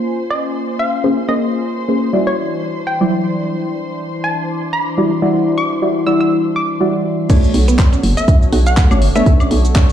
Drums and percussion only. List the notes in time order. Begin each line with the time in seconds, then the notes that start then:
7.30 kick, closed hi-hat, crash, shaker
7.44 shaker
7.54 open hi-hat
7.68 closed hi-hat, shaker
7.79 kick, clap, closed hi-hat, shaker
7.93 closed hi-hat, shaker
8.03 open hi-hat
8.17 closed hi-hat, shaker
8.28 kick, closed hi-hat, shaker
8.42 shaker
8.53 open hi-hat
8.66 closed hi-hat, shaker
8.77 kick, clap, closed hi-hat, shaker
8.91 high woodblock, shaker
9.02 open hi-hat
9.16 closed hi-hat, shaker
9.26 kick, closed hi-hat, shaker
9.40 high woodblock, shaker
9.51 open hi-hat
9.65 closed hi-hat, shaker
9.76 kick, clap, closed hi-hat, shaker